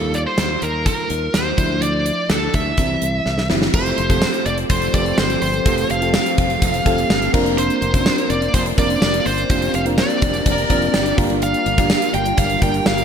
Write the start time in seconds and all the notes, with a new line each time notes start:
Already playing: D#2 G3 A#3 D#4 F4 A4
0.14 D5, closed hi-hat
0.27 C5
0.38 D#2, snare, closed hi-hat
0.62 D#2 A#4, closed hi-hat
0.86 A#4, kick, closed hi-hat
1.10 D#2, closed hi-hat
1.34 D#2 C5, snare, closed hi-hat
1.57 D2 F3 A3 D4 E4, kick, closed hi-hat
1.82 D5, closed hi-hat
2.06 closed hi-hat
2.30 D2 A4, snare, closed hi-hat
2.54 D2 E5, kick, closed hi-hat
2.77 C2 E3 G3 C4 E4, kick, closed hi-hat
3.02 C2, closed hi-hat
3.26 C2, snare
3.38 snare
3.49 G1 E3 G3 C4 E4, snare
3.62 snare
3.73 F1 F3 A3 C4 F4 G4 A4 C5, kick, crash
3.86 closed hi-hat
3.98 F1, closed hi-hat
4.09 A3 C4 F4 G4 A4, kick, closed hi-hat
4.22 snare, tambourine
4.34 closed hi-hat
4.46 F1 D5, closed hi-hat
4.58 closed hi-hat
4.70 F1 C5, kick, closed hi-hat
4.82 closed hi-hat
4.93 F1 A3 C4 F4 G4 B4 D5, kick, closed hi-hat
5.00 C5
5.06 closed hi-hat
5.18 G1 C5, snare, tambourine
5.30 closed hi-hat
5.42 G1 C5, open hi-hat
5.54 closed hi-hat
5.65 F1 A3 C4 F4 G4 A4, kick, closed hi-hat
5.78 closed hi-hat
5.90 F1 F5, closed hi-hat
6.01 A3 C4 F4 G4 A4, closed hi-hat
6.14 F5, snare, tambourine
6.26 closed hi-hat
6.38 F1, kick, closed hi-hat
6.50 closed hi-hat
6.62 F1, kick, closed hi-hat
6.74 closed hi-hat
6.85 F1 A3 C4 F4 G4 A4, kick, closed hi-hat
6.98 closed hi-hat
7.10 G1, snare, tambourine
7.22 closed hi-hat
7.33 F1 A#3 C4 D4 F4 A#4, kick, crash
7.46 closed hi-hat
7.58 C5, closed hi-hat
7.70 closed hi-hat
7.82 F1, closed hi-hat
7.93 A#3 C4 C#4 F4 C5, kick, closed hi-hat
8.00 D4
8.06 snare, tambourine
8.18 closed hi-hat
8.30 F1 D5, closed hi-hat
8.42 closed hi-hat
8.54 F1 C5, kick, closed hi-hat
8.66 closed hi-hat
8.77 F1 A#3 C4 D4 F4 A#4 D5, kick, closed hi-hat
8.90 closed hi-hat
9.02 F1 D5, snare, tambourine
9.14 closed hi-hat
9.26 G1 C5, open hi-hat
9.38 closed hi-hat
9.49 F1 A#3 C4 D4 F4 G4, kick, closed hi-hat
9.62 closed hi-hat
9.74 F1 F5, closed hi-hat
9.85 A#3 C4 D4 F4 A#4, closed hi-hat
9.98 D5, snare, tambourine
10.10 closed hi-hat
10.22 F1, kick, closed hi-hat
10.34 closed hi-hat
10.46 F1 A#4, kick, closed hi-hat
10.58 closed hi-hat
10.70 F1 A#3 C4 D4 F4 A#4, kick, closed hi-hat
10.82 closed hi-hat
10.94 G1 G4, snare, tambourine
11.06 closed hi-hat
11.17 G1 G3 A#3 D4 F4 G4 A#4, kick, open hi-hat
11.30 closed hi-hat
11.42 F5, closed hi-hat
11.54 closed hi-hat
11.66 G1, closed hi-hat
11.77 A#3 D4 F4 G4 A#4, kick, closed hi-hat
11.90 snare, tambourine
12.02 closed hi-hat
12.14 G1 G5, closed hi-hat
12.26 closed hi-hat
12.38 G1 F5, kick, closed hi-hat
12.50 closed hi-hat
12.61 G1 A#3 D4 F4 G4 A#4 G5, kick, closed hi-hat
12.74 closed hi-hat
12.86 G1 F5, snare, tambourine
12.98 closed hi-hat